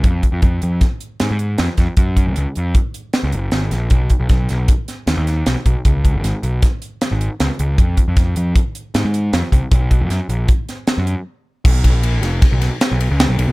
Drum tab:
CC |----------|----------|----------|----------|
RD |----------|----------|----------|----------|
HH |xxxxxxxxxx|xxxxxxxxxx|xxxxxxxxxx|xxxxxxxxxx|
SD |----o-o-oo|------o-oo|--oo-oooo-|--o-o-o-o-|
BD |ooo-o----o|oo--o-----|ooo-o----o|oo--o-----|

CC |----------|----------|x---------|
RD |----------|----------|-xxxxxxxxx|
HH |xxxxxxxxxx|xxxxxxxx--|----------|
SD |--o---o-o-|--o--oo---|---oooo-o-|
BD |ooo-o----o|oo--o-----|oo--o-----|